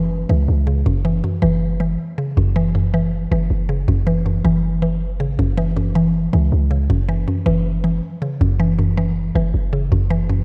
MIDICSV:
0, 0, Header, 1, 3, 480
1, 0, Start_track
1, 0, Tempo, 377358
1, 1095, Time_signature, 4, 2, 24, 8
1, 13284, End_track
2, 0, Start_track
2, 0, Title_t, "Synth pluck"
2, 0, Program_c, 0, 84
2, 0, Note_on_c, 0, 42, 81
2, 0, Note_on_c, 0, 49, 83
2, 0, Note_on_c, 0, 52, 97
2, 135, Note_off_c, 0, 49, 0
2, 359, Note_off_c, 0, 52, 0
2, 374, Note_on_c, 0, 52, 82
2, 851, Note_on_c, 0, 49, 74
2, 854, Note_off_c, 0, 42, 0
2, 1093, Note_off_c, 0, 49, 0
2, 1094, Note_off_c, 0, 52, 0
2, 1095, Note_on_c, 0, 42, 89
2, 1333, Note_on_c, 0, 52, 81
2, 1560, Note_off_c, 0, 42, 0
2, 1575, Note_on_c, 0, 42, 72
2, 1793, Note_off_c, 0, 52, 0
2, 1808, Note_on_c, 0, 52, 101
2, 2275, Note_off_c, 0, 52, 0
2, 2290, Note_on_c, 0, 52, 80
2, 2773, Note_on_c, 0, 49, 72
2, 2775, Note_off_c, 0, 42, 0
2, 3017, Note_on_c, 0, 42, 90
2, 3239, Note_off_c, 0, 52, 0
2, 3255, Note_on_c, 0, 52, 87
2, 3481, Note_off_c, 0, 42, 0
2, 3496, Note_on_c, 0, 42, 74
2, 3721, Note_off_c, 0, 52, 0
2, 3737, Note_on_c, 0, 52, 94
2, 3974, Note_off_c, 0, 49, 0
2, 4203, Note_off_c, 0, 52, 0
2, 4219, Note_on_c, 0, 52, 86
2, 4694, Note_on_c, 0, 49, 76
2, 4696, Note_off_c, 0, 42, 0
2, 4935, Note_off_c, 0, 49, 0
2, 4936, Note_on_c, 0, 42, 91
2, 4937, Note_off_c, 0, 52, 0
2, 5173, Note_on_c, 0, 52, 83
2, 5400, Note_off_c, 0, 42, 0
2, 5416, Note_on_c, 0, 42, 74
2, 5640, Note_off_c, 0, 52, 0
2, 5655, Note_on_c, 0, 52, 96
2, 6119, Note_off_c, 0, 52, 0
2, 6134, Note_on_c, 0, 52, 83
2, 6615, Note_off_c, 0, 42, 0
2, 6615, Note_on_c, 0, 49, 80
2, 6855, Note_on_c, 0, 42, 93
2, 7076, Note_off_c, 0, 52, 0
2, 7091, Note_on_c, 0, 52, 90
2, 7319, Note_off_c, 0, 42, 0
2, 7334, Note_on_c, 0, 42, 82
2, 7558, Note_off_c, 0, 52, 0
2, 7573, Note_on_c, 0, 52, 95
2, 7815, Note_off_c, 0, 49, 0
2, 8039, Note_off_c, 0, 52, 0
2, 8054, Note_on_c, 0, 52, 82
2, 8532, Note_on_c, 0, 49, 74
2, 8534, Note_off_c, 0, 42, 0
2, 8773, Note_off_c, 0, 49, 0
2, 8775, Note_off_c, 0, 52, 0
2, 8775, Note_on_c, 0, 42, 89
2, 9013, Note_on_c, 0, 52, 82
2, 9241, Note_off_c, 0, 42, 0
2, 9256, Note_on_c, 0, 42, 74
2, 9474, Note_off_c, 0, 52, 0
2, 9489, Note_on_c, 0, 52, 101
2, 9956, Note_off_c, 0, 52, 0
2, 9971, Note_on_c, 0, 52, 79
2, 10454, Note_on_c, 0, 49, 73
2, 10455, Note_off_c, 0, 42, 0
2, 10698, Note_on_c, 0, 42, 93
2, 10919, Note_off_c, 0, 52, 0
2, 10934, Note_on_c, 0, 52, 85
2, 11161, Note_off_c, 0, 42, 0
2, 11176, Note_on_c, 0, 42, 77
2, 11401, Note_off_c, 0, 52, 0
2, 11416, Note_on_c, 0, 52, 95
2, 11654, Note_off_c, 0, 49, 0
2, 11884, Note_off_c, 0, 52, 0
2, 11899, Note_on_c, 0, 52, 88
2, 12374, Note_on_c, 0, 49, 75
2, 12375, Note_off_c, 0, 42, 0
2, 12614, Note_off_c, 0, 49, 0
2, 12616, Note_on_c, 0, 42, 85
2, 12617, Note_off_c, 0, 52, 0
2, 12853, Note_on_c, 0, 52, 86
2, 13080, Note_off_c, 0, 42, 0
2, 13096, Note_on_c, 0, 42, 76
2, 13284, Note_off_c, 0, 42, 0
2, 13284, Note_off_c, 0, 52, 0
2, 13284, End_track
3, 0, Start_track
3, 0, Title_t, "808-style bass"
3, 0, Program_c, 1, 38
3, 0, Note_on_c, 1, 30, 114
3, 327, Note_off_c, 1, 30, 0
3, 374, Note_on_c, 1, 37, 111
3, 605, Note_off_c, 1, 37, 0
3, 614, Note_on_c, 1, 37, 109
3, 1075, Note_off_c, 1, 37, 0
3, 1095, Note_on_c, 1, 30, 110
3, 1556, Note_off_c, 1, 30, 0
3, 1815, Note_on_c, 1, 30, 105
3, 2506, Note_off_c, 1, 30, 0
3, 3015, Note_on_c, 1, 30, 112
3, 4167, Note_off_c, 1, 30, 0
3, 4215, Note_on_c, 1, 30, 108
3, 4445, Note_off_c, 1, 30, 0
3, 4455, Note_on_c, 1, 30, 111
3, 4916, Note_off_c, 1, 30, 0
3, 4935, Note_on_c, 1, 30, 111
3, 5626, Note_off_c, 1, 30, 0
3, 5654, Note_on_c, 1, 30, 106
3, 6615, Note_on_c, 1, 32, 99
3, 6634, Note_off_c, 1, 30, 0
3, 6843, Note_off_c, 1, 32, 0
3, 6855, Note_on_c, 1, 30, 110
3, 8007, Note_off_c, 1, 30, 0
3, 8054, Note_on_c, 1, 37, 106
3, 8285, Note_off_c, 1, 37, 0
3, 8295, Note_on_c, 1, 37, 110
3, 8756, Note_off_c, 1, 37, 0
3, 8774, Note_on_c, 1, 30, 117
3, 9235, Note_off_c, 1, 30, 0
3, 9494, Note_on_c, 1, 30, 102
3, 10186, Note_off_c, 1, 30, 0
3, 10695, Note_on_c, 1, 30, 112
3, 11847, Note_off_c, 1, 30, 0
3, 11894, Note_on_c, 1, 30, 105
3, 12125, Note_off_c, 1, 30, 0
3, 12135, Note_on_c, 1, 30, 110
3, 12596, Note_off_c, 1, 30, 0
3, 12614, Note_on_c, 1, 30, 111
3, 13284, Note_off_c, 1, 30, 0
3, 13284, End_track
0, 0, End_of_file